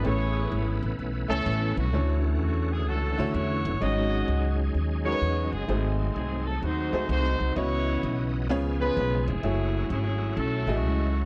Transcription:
0.03 A1 A2 E3 A3 B3 C#4 E4 G#4 B4 C#5
0.52 G#1
0.83 A1
0.99 B1
1.28 C#2 A3 C#4 E4 A4 C#5 G#5
1.46 A1
1.77 B1 A3 C#4 F#4
1.93 D2 D3 E3 A3 C#4 E4 F4 F#4 C#5
1.99 F#4
2.41 E2 F#4
2.73 G#4
2.87 C#2 C#4 F#4 A4
3.18 D2 D3 A3 E4 F#4 C#5
3.34 E2 E4 F#4 C#5
3.65 F#1
3.81 G#1 G#2 F#3 G#3 C#4 D#4 F#4 G#4 C#5 D#5
4.28 C#2
4.75 D#2
5.05 G#3 C#4 D#4 F#4 A#4 C#5
5.12 B4
5.22 E2
5.52 F#1 C4 D#4 G#4
5.68 G#1 G#2 F#3 A3 B3 D#4 F#4 G#4 C5
5.75 C4
6.15 C2 G#4
6.46 A4
6.63 D#2 D#4 F#4 C5
6.92 C#2 A3 D#4 F#4 G#4 C5
7.09 C2 D#4 F#4 C5
7.40 C2
7.56 C#2 C#3 E3 B3 C#4 E4 F#4 C#5 D#5
8.03 B1
8.49 C#2 C#3 F3 G#3 B3 C#4 F4 G#4 C#5
8.80 B3 C#4 F4 G#4 B4
8.97 B1
9.28 F1 C#4 E4 G#4
9.43 F#1 F#3 A3 C#4 E4 F#4 G#4 C#5
9.90 G#1 C#4 E4 G#4
10.37 B1 C#4 E4 A4
10.67 A1 A3 E4 F#4 G#4 D#5
10.76 A3 C#4 F#4
10.83 C#2

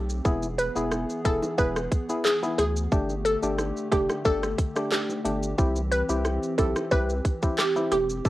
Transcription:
Already playing: B1 A3 C4 G4
0.10 shaker
0.25 E1 E3 B3 E4 G#4, kick, shaker
0.43 high bongo, shaker
0.58 B4, closed hi-hat, shaker
0.76 E1 B3 E4 G#4, shaker
0.92 cross-stick, high bongo, shaker
1.10 shaker
1.25 E1 B3 E4 G#4 A4, kick, closed hi-hat, shaker
1.42 high bongo, shaker
1.58 E1 B3 E4 G#4 B4, kick, shaker
1.76 cross-stick, shaker
1.92 kick, closed hi-hat, shaker
2.09 B3 E4 G#4, shaker
2.25 G#4, clap, high bongo, shaker
2.43 B3 E4 G#4, high bongo, shaker
2.58 D2 G#4, cross-stick, closed hi-hat, low bongo, shaker
2.76 shaker
2.92 G1 D3 A3 D4 G4, kick, shaker
3.09 high bongo, shaker
3.25 A4, closed hi-hat, shaker
3.42 G1 A3 D4 G4, shaker
3.58 cross-stick, high bongo, shaker
3.77 shaker
3.91 F1 A3 D4 G4, kick, cross-stick, closed hi-hat, shaker
4.09 cross-stick, high bongo, shaker
4.25 G1 A3 D4 G4 A4, kick, shaker
4.43 cross-stick, shaker
4.58 kick, closed hi-hat, shaker
4.76 A3 D4 G4, cross-stick, shaker
4.92 G4, clap, high bongo, shaker
5.09 high bongo, shaker
5.25 G1 A3 D4 G4, closed hi-hat, low bongo, shaker
5.43 shaker
5.58 C2 E3 C4 E4 G4, kick, shaker
5.76 high bongo, shaker
5.92 B4, closed hi-hat, shaker
6.09 C2 C4 E4 G4, shaker
6.25 cross-stick, high bongo, shaker
6.43 shaker
6.58 B1 C4 E4 G4 A4, kick, closed hi-hat, shaker
6.76 cross-stick, high bongo, shaker
6.91 C2 C4 E4 G4 B4, kick, shaker
7.10 shaker
7.25 kick, closed hi-hat, high bongo, shaker
7.42 C4 E4 G4, kick, shaker
7.58 G4, cross-stick, clap, high bongo, shaker
7.76 C4 E4 G4, high bongo, shaker
7.92 E1 G4, cross-stick, closed hi-hat, low bongo, shaker
8.10 shaker
8.25 A1 A3 C4 G4 A4, kick, shaker

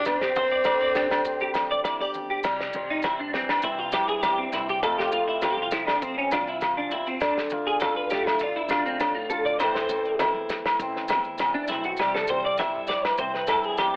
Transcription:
0.05 G1 G2 C4 D4, kick, snare, muted conga, low agogo, maracas
0.21 G4, snare, maracas
0.36 C4 C5, muted conga, high conga, maracas
0.50 D5, maracas
0.64 D3 D5, kick, snare, low conga, low agogo, maracas
0.79 G1 D5, maracas
0.95 D4 G4, snare, maracas
1.10 D2 D4, snare, low agogo, maracas
1.25 C4, kick, muted conga, maracas
1.40 G4, maracas
1.54 D2 G2, snare, low agogo, maracas
1.71 D5
1.84 E4 D5, kick, snare, high conga, low agogo, maracas
2.00 G1 G4 D5
2.14 muted conga, high conga, maracas
2.30 G4
2.43 C2 G3, muted steel-string acoustic guitar stroke, kick, snare, crash, muted conga, low agogo, maracas
2.60 snare
2.73 C2 C4, high conga, maracas
2.90 D#4
3.02 C4 E4, kick, snare, muted conga, high conga, low agogo, maracas
3.20 G2 D4
3.33 E3 C4, snare
3.49 D4, snare, low agogo
3.62 C2 C4 E4, kick, muted conga, maracas
3.79 F4
3.92 G2 E4 G4, snare, muted conga, low agogo, maracas
4.08 G#4, maracas
4.22 G2 G4, kick, snare, high conga, low agogo, maracas
4.38 C4
4.52 C2 C4 E4, snare, maracas
4.69 G4, maracas
4.83 F2 F3 A3 C4 F4 A4, kick, snare, muted conga, low agogo, maracas
4.98 G4, snare
5.12 F2 C4 F4, maracas
5.28 E4
5.42 C4 F4, kick, snare, muted conga, high conga, low agogo, maracas
5.52 G4
5.57 C2
5.62 F4
5.71 F3 E4, snare, maracas
5.87 D4, snare, low agogo
6.02 F2 C4, kick, muted conga, maracas
6.18 C#4
6.31 C2 D4 F4, snare, muted conga, high conga, low conga, low agogo, maracas
6.47 E4, maracas
6.61 C3, kick, snare, high conga, low agogo, maracas
6.77 D4
6.89 E2 C4 E4, maracas
7.06 C4, maracas
7.20 D2 D3 D4, kick, snare, muted conga, low agogo, maracas
7.38 snare
7.50 D2 F4, high conga, maracas
7.67 G#4
7.80 F4 A4, kick, snare, muted conga, high conga, low agogo, maracas
7.95 A1 B4
8.10 A3 G4, snare, maracas
8.27 E4, snare, low agogo
8.39 D2 D4 F4, kick, muted conga, maracas
8.56 E4
8.68 A1 D4 F4, snare, muted conga, low agogo, maracas
8.86 C4, maracas
8.99 A2 D4, kick, snare, high conga, low agogo, maracas
9.14 F4
9.29 D2 F4 A4, maracas
9.45 D5, maracas
9.59 A1 A2 E3 A3 C5, kick, snare, muted conga, low agogo, maracas
9.63 C4 E4
9.75 snare
9.89 A1 C4, maracas
10.05 maracas
10.19 E4, kick, snare, muted conga, high conga, low agogo, maracas
10.34 E2
10.49 snare, maracas
10.66 snare, low agogo
10.79 A1 C4, kick, muted conga, maracas
10.96 snare
11.08 E2 E4, snare, high conga, low conga, low agogo, maracas
11.24 maracas
11.38 E2, kick, snare, high conga, low agogo, maracas
11.54 D4
11.67 B1 C4 E4, snare, maracas
11.84 F#4, maracas
11.97 C2 C3 G3 G4, kick, snare, muted conga, low agogo, maracas
12.14 A4, snare
12.27 C2 C4 C5, high conga, maracas
12.45 D5
12.57 E4 E5, kick, snare, muted conga, high conga, low agogo, maracas
12.76 G2
12.87 D5, muted steel-string acoustic guitar stroke, snare, maracas
13.05 B4, snare, low agogo
13.18 C2 C4 C5, kick, muted conga, maracas
13.33 B4, snare
13.47 G2 E4 A4, snare, muted conga, low agogo, maracas
13.63 G#4, maracas
13.77 G2 G4, kick, snare, high conga, low agogo, maracas

